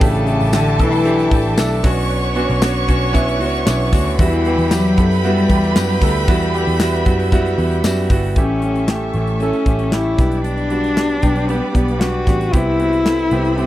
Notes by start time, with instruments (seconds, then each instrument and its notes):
0.00 picked electric bass A1, grand piano A2 A3 D4 E4 G4, cello C#3, string section A4 E5 G5 D6, violin section A4 A5, kick, hi-hat pedal, open hi-hat
0.14 hi-hat pedal, open hi-hat
0.27 grand piano A3 D4 E4 G4, hi-hat pedal, open hi-hat
0.40 picked electric bass A1, hi-hat pedal, open hi-hat
0.53 cello D3, grand piano A3 D4 E4 G4, snare, clap, hi-hat pedal, open hi-hat, tambourine
0.66 hi-hat pedal, open hi-hat
0.79 picked electric bass B1, cello E3, grand piano A3 D4 E4 A4, kick, hi-hat pedal, open hi-hat
0.92 hi-hat pedal, open hi-hat
1.05 grand piano A3 D4 E4 G4, hi-hat pedal, open hi-hat
1.19 hi-hat pedal
1.31 picked electric bass A1, grand piano A3 D4 E4 G4, kick, hi-hat pedal, open hi-hat
1.44 open hi-hat
1.58 picked electric bass B1, grand piano A3 D4 E4 A4, snare, clap, hi-hat pedal, open hi-hat, tambourine
1.71 hi-hat pedal, open hi-hat
1.83 picked electric bass B1, grand piano B2 B3 C#4 D4 F#4, string section B4 C#5 F#5 C#6, violin section C#5 C#6, kick, snare, hi-hat pedal, open hi-hat
1.97 hi-hat pedal, open hi-hat
2.10 hi-hat pedal, open hi-hat
2.24 hi-hat pedal
2.35 grand piano B3 C#4 D4 F#4, hi-hat pedal, open hi-hat
2.50 picked electric bass B1, open hi-hat
2.61 grand piano B3 C#4 D4 F#4, snare, clap, hi-hat pedal, open hi-hat, tambourine
2.75 hi-hat pedal
2.88 picked electric bass B1, grand piano B3 C#4 D4 F#4, kick, hi-hat pedal, open hi-hat
3.01 open hi-hat
3.13 grand piano B3 C#4 D4 E4, kick, hi-hat pedal, open hi-hat
3.28 hi-hat pedal, open hi-hat
3.39 picked electric bass C#2, grand piano B3 C#4 D4 F#4, hi-hat pedal, open hi-hat
3.54 hi-hat pedal, open hi-hat
3.66 picked electric bass B1, grand piano B3 C#4 D4 E4, snare, clap, hi-hat pedal, open hi-hat, tambourine
3.80 hi-hat pedal, open hi-hat
3.92 picked electric bass D2, grand piano B3 C#4 D4 F#4, kick, snare, hi-hat pedal, open hi-hat
3.96 cello D3
4.06 hi-hat pedal, open hi-hat
4.18 picked electric bass E2, grand piano E3 G3 B3 E4 F#4, cello E3, violin section B4 B5, string section E5 G5 B5, kick, hi-hat pedal, open hi-hat
4.32 hi-hat pedal, open hi-hat
4.45 grand piano G3 B3 E4 G4, hi-hat pedal, open hi-hat
4.58 picked electric bass E2, hi-hat pedal, open hi-hat
4.71 cello F#3, grand piano G3 B3 E4 G4, snare, clap, hi-hat pedal, open hi-hat, tambourine
4.85 hi-hat pedal, open hi-hat
4.97 picked electric bass F#2, grand piano G3 B3 E4 A4, kick, hi-hat pedal, open hi-hat
5.11 hi-hat pedal, open hi-hat
5.24 grand piano G3 B3 E4 F#4, cello G3, hi-hat pedal, open hi-hat
5.37 hi-hat pedal, open hi-hat
5.50 picked electric bass E2, grand piano G3 B3 E4 G4, kick, hi-hat pedal, open hi-hat
5.63 hi-hat pedal, open hi-hat
5.76 picked electric bass F#2, grand piano G3 B3 E4 F#4, snare, clap, hi-hat pedal, open hi-hat, tambourine
5.89 hi-hat pedal, open hi-hat
6.01 picked electric bass D2, grand piano G3 B3 E4 A4, kick, snare, hi-hat pedal, open hi-hat
6.15 hi-hat pedal, open hi-hat
6.28 picked electric bass E2, grand piano E3 G3 B3 E4 F#4, kick, hi-hat pedal, open hi-hat
6.41 hi-hat pedal, open hi-hat
6.54 grand piano G3 B3 E4 G4, hi-hat pedal, open hi-hat
6.67 picked electric bass E2, hi-hat pedal, open hi-hat
6.80 grand piano G3 B3 E4 F#4, snare, clap, hi-hat pedal, open hi-hat, tambourine
6.93 hi-hat pedal, open hi-hat
7.05 picked electric bass F#2, grand piano G3 B3 E4 F#4, kick, hi-hat pedal, open hi-hat
7.19 hi-hat pedal, open hi-hat
7.32 grand piano G3 B3 E4 F#4, kick, hi-hat pedal, open hi-hat
7.45 hi-hat pedal, open hi-hat
7.58 picked electric bass E2, grand piano G3 B3 E4 F#4, hi-hat pedal, open hi-hat
7.71 hi-hat pedal, open hi-hat
7.84 picked electric bass F#2, grand piano G3 B3 E4 F#4, snare, clap, hi-hat pedal, open hi-hat, tambourine
7.97 hi-hat pedal, open hi-hat
8.10 picked electric bass G1, grand piano G3 B3 E4 F#4, kick, hi-hat pedal, open hi-hat
8.23 hi-hat pedal, open hi-hat
8.35 picked electric bass A1, grand piano A2 A3 C#4 E4 G4, string section G3 E5 A5 C#6, cello C#4, kick, closed hi-hat
8.62 grand piano A3 C#4 E4 G4, closed hi-hat
8.76 closed hi-hat
8.88 cello A3, grand piano A3 C#4 E4 G4, snare, clap
9.13 picked electric bass A1, grand piano A3 C#4 E4 G4, closed hi-hat
9.27 closed hi-hat
9.40 grand piano A3 C#4 E4 A4, cello C#4, closed hi-hat
9.53 closed hi-hat
9.66 picked electric bass A1, grand piano A3 C#4 E4 G4, kick, closed hi-hat
9.79 closed hi-hat
9.92 grand piano A3 C#4 E4 G4, cello E4, snare, clap
10.17 picked electric bass B1, grand piano B2 G3 B3 D4 G4, string section D5 B5 D6, kick, snare, closed hi-hat
10.32 closed hi-hat
10.44 cello D4, closed hi-hat
10.57 closed hi-hat
10.70 grand piano G3 B3 D4 F#4, closed hi-hat
10.84 closed hi-hat
10.97 grand piano G3 B3 D4 F#4, snare, clap
11.10 closed hi-hat
11.22 picked electric bass B1, grand piano G3 B3 D4 G4, kick, closed hi-hat
11.36 closed hi-hat
11.48 grand piano G3 B3 D4 G4, cello B3, closed hi-hat
11.73 picked electric bass B1, grand piano G3 B3 D4 G4, cello B3, kick, closed hi-hat
11.88 closed hi-hat
12.00 grand piano G3 B3 D4 G4, cello F#4, snare, clap
12.27 picked electric bass A1, grand piano G3 B3 D4 G4, kick, snare, closed hi-hat
12.41 closed hi-hat
12.52 picked electric bass C2, grand piano C3 B3 C4 E4 G4, cello E4, string section C5 B5 E6, kick, closed hi-hat
12.80 grand piano B3 C4 E4 F#4, closed hi-hat
12.93 closed hi-hat
13.06 grand piano B3 C4 E4 A4, snare, clap
13.19 closed hi-hat
13.31 picked electric bass C2, grand piano B3 C4 E4 G4, closed hi-hat
13.45 closed hi-hat
13.58 grand piano B3 C4 E4 G4, cello C4, closed hi-hat